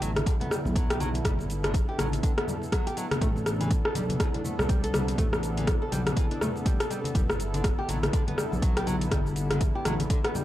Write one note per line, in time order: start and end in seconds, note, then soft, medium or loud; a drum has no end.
0.00 0.21 A1 medium
0.00 3.18 D3 medium
0.00 0.10 F#3 loud
0.00 10.45 B3 medium
0.00 3.18 E4 medium
0.00 10.45 A4 loud
0.00 closed hi-hat soft
0.00 muted conga medium
0.00 high conga medium
0.00 shaker medium
0.16 cross-stick medium
0.16 closed hi-hat soft
0.16 high conga medium
0.16 shaker soft
0.26 0.34 D3 medium
0.26 kick loud
0.26 closed hi-hat medium
0.26 shaker medium
0.40 0.51 B3 medium
0.40 closed hi-hat soft
0.40 high conga medium
0.40 low conga medium
0.50 0.59 G3 medium
0.50 cross-stick medium
0.50 high conga medium
0.50 shaker medium
0.65 1.20 B1 loud
0.65 muted conga medium
0.65 low conga loud
0.65 shaker soft
0.76 0.89 F#3 medium
0.76 kick loud
0.76 closed hi-hat medium
0.76 shaker medium
0.90 0.99 G4 medium
0.90 cross-stick loud
0.90 closed hi-hat soft
0.90 muted conga soft
0.90 shaker soft
1.00 1.08 F#3 medium
1.00 closed hi-hat soft
1.00 high conga loud
1.00 shaker medium
1.14 closed hi-hat soft
1.14 muted conga medium
1.14 shaker soft
1.25 1.82 G1 medium
1.25 1.33 G3 medium
1.25 kick loud
1.25 cross-stick medium
1.25 closed hi-hat medium
1.25 low conga loud
1.25 shaker medium
1.39 muted conga medium
1.39 shaker soft
1.50 closed hi-hat soft
1.50 shaker medium
1.63 1.73 D3 medium
1.63 cross-stick medium
1.63 closed hi-hat soft
1.63 high conga medium
1.63 shaker soft
1.74 kick loud
1.74 closed hi-hat medium
1.74 muted conga soft
1.74 shaker medium
1.89 1.98 G4 medium
1.99 2.17 A1 medium
1.99 2.06 F#3 loud
1.99 cross-stick medium
1.99 closed hi-hat soft
1.99 muted conga soft
1.99 high conga medium
1.99 shaker medium
2.12 closed hi-hat soft
2.12 high conga loud
2.12 shaker soft
2.23 2.31 D3 medium
2.23 kick loud
2.23 closed hi-hat medium
2.23 shaker medium
2.38 2.47 B3 medium
2.38 cross-stick medium
2.38 closed hi-hat soft
2.48 2.56 G3 medium
2.48 high conga medium
2.48 low conga medium
2.48 shaker medium
2.62 muted conga soft
2.62 shaker soft
2.72 2.85 F#3 medium
2.72 kick loud
2.72 cross-stick medium
2.72 closed hi-hat medium
2.72 shaker medium
2.87 2.96 G4 medium
2.87 closed hi-hat soft
2.87 muted conga soft
2.87 shaker soft
2.97 3.05 F#3 medium
2.97 closed hi-hat soft
2.97 shaker loud
3.11 cross-stick medium
3.11 closed hi-hat soft
3.11 muted conga medium
3.11 high conga loud
3.11 shaker soft
3.21 3.79 A1 loud
3.21 7.11 C3 medium
3.21 3.29 A3 medium
3.21 7.11 D4 medium
3.21 kick loud
3.21 closed hi-hat medium
3.21 low conga loud
3.21 shaker medium
3.36 muted conga medium
3.36 shaker soft
3.46 cross-stick medium
3.46 closed hi-hat soft
3.46 shaker medium
3.60 3.70 E3 medium
3.60 closed hi-hat soft
3.60 high conga loud
3.60 shaker soft
3.71 kick loud
3.71 closed hi-hat medium
3.71 muted conga soft
3.71 shaker medium
3.85 3.94 A4 medium
3.85 cross-stick medium
3.95 4.14 B1 medium
3.95 4.03 G3 loud
3.95 closed hi-hat soft
3.95 muted conga medium
3.95 high conga medium
3.95 shaker loud
4.09 closed hi-hat soft
4.09 high conga loud
4.09 shaker soft
4.20 4.28 E3 medium
4.20 kick loud
4.20 cross-stick medium
4.20 closed hi-hat medium
4.20 muted conga soft
4.20 shaker medium
4.34 4.44 D4 medium
4.34 closed hi-hat soft
4.34 high conga medium
4.34 low conga medium
4.44 4.52 A3 medium
4.44 high conga medium
4.44 shaker loud
4.59 5.14 C2 loud
4.59 cross-stick medium
4.59 muted conga soft
4.59 low conga medium
4.59 shaker soft
4.69 4.82 G3 medium
4.69 kick loud
4.69 closed hi-hat medium
4.69 shaker medium
4.83 4.93 A4 medium
4.83 closed hi-hat soft
4.83 muted conga soft
4.83 shaker soft
4.94 5.01 G3 medium
4.94 cross-stick medium
4.94 closed hi-hat soft
4.94 high conga loud
4.94 shaker loud
5.08 closed hi-hat soft
5.08 muted conga soft
5.08 shaker soft
5.18 5.75 A1 loud
5.18 5.26 A3 medium
5.18 kick loud
5.18 closed hi-hat medium
5.18 low conga loud
5.18 shaker medium
5.33 cross-stick medium
5.33 muted conga medium
5.33 shaker soft
5.43 closed hi-hat soft
5.43 shaker medium
5.57 5.66 E3 medium
5.57 closed hi-hat soft
5.57 high conga medium
5.57 shaker soft
5.67 kick loud
5.67 cross-stick medium
5.67 closed hi-hat medium
5.67 muted conga soft
5.67 shaker medium
5.82 5.91 A4 medium
5.92 6.11 B1 medium
5.92 6.00 G3 loud
5.92 closed hi-hat soft
5.92 muted conga medium
5.92 high conga medium
5.92 shaker medium
6.06 cross-stick medium
6.06 closed hi-hat soft
6.06 high conga loud
6.06 shaker soft
6.17 6.24 E3 medium
6.17 kick loud
6.17 closed hi-hat medium
6.17 muted conga soft
6.17 shaker medium
6.31 6.41 D4 medium
6.31 closed hi-hat soft
6.41 6.49 A3 medium
6.41 cross-stick medium
6.41 high conga medium
6.41 low conga medium
6.41 shaker loud
6.55 muted conga soft
6.55 shaker soft
6.65 6.79 G3 medium
6.65 kick loud
6.65 closed hi-hat medium
6.65 high conga medium
6.65 shaker medium
6.80 6.89 A4 medium
6.80 cross-stick medium
6.80 closed hi-hat soft
6.80 muted conga soft
6.80 shaker soft
6.90 6.98 G3 loud
6.90 closed hi-hat soft
6.90 shaker loud
7.04 closed hi-hat soft
7.04 muted conga soft
7.04 high conga loud
7.04 shaker soft
7.15 7.72 G1 loud
7.15 10.45 D3 medium
7.15 7.23 G3 medium
7.15 10.45 E4 medium
7.15 kick loud
7.15 closed hi-hat medium
7.15 low conga loud
7.15 shaker medium
7.29 cross-stick medium
7.29 muted conga soft
7.29 shaker soft
7.40 closed hi-hat soft
7.40 shaker medium
7.54 7.63 D3 medium
7.54 closed hi-hat soft
7.54 high conga medium
7.54 shaker soft
7.64 kick loud
7.64 cross-stick medium
7.64 closed hi-hat medium
7.64 muted conga soft
7.64 shaker medium
7.79 7.88 G4 medium
7.88 8.08 A1 medium
7.88 7.96 F#3 loud
7.88 closed hi-hat soft
7.88 muted conga medium
7.88 high conga medium
7.88 shaker medium
8.03 cross-stick medium
8.03 closed hi-hat soft
8.03 high conga loud
8.03 shaker soft
8.13 8.21 D3 medium
8.13 kick loud
8.13 closed hi-hat medium
8.13 shaker medium
8.27 8.37 B3 medium
8.27 closed hi-hat soft
8.27 high conga medium
8.27 low conga medium
8.38 8.46 G3 medium
8.38 cross-stick medium
8.38 high conga medium
8.38 shaker medium
8.52 9.07 B1 loud
8.52 muted conga soft
8.52 low conga medium
8.52 shaker soft
8.62 8.75 F#3 medium
8.62 kick loud
8.62 closed hi-hat medium
8.62 shaker medium
8.77 8.86 G4 medium
8.77 cross-stick medium
8.77 closed hi-hat soft
8.77 muted conga soft
8.77 shaker soft
8.86 8.95 F#3 medium
8.86 closed hi-hat soft
8.86 high conga loud
8.86 shaker medium
9.02 closed hi-hat soft
9.02 muted conga soft
9.02 shaker soft
9.11 9.69 G1 loud
9.11 9.19 G3 medium
9.11 kick loud
9.11 cross-stick medium
9.11 closed hi-hat medium
9.11 low conga loud
9.11 shaker medium
9.26 muted conga medium
9.26 shaker soft
9.36 closed hi-hat soft
9.36 shaker medium
9.50 9.60 D3 medium
9.50 cross-stick medium
9.50 closed hi-hat soft
9.50 high conga medium
9.50 shaker soft
9.61 kick loud
9.61 closed hi-hat medium
9.61 shaker medium
9.75 9.84 G4 medium
9.85 10.04 A1 medium
9.85 9.93 F#3 loud
9.85 cross-stick medium
9.85 closed hi-hat medium
9.85 muted conga medium
9.85 high conga medium
9.85 shaker medium
10.00 closed hi-hat soft
10.00 high conga loud
10.00 shaker soft
10.10 10.18 D3 medium
10.10 kick loud
10.10 closed hi-hat medium
10.10 muted conga soft
10.10 shaker medium
10.24 10.34 B3 medium
10.24 cross-stick medium
10.24 closed hi-hat soft
10.35 10.42 G3 medium
10.35 high conga medium
10.35 low conga medium
10.35 shaker medium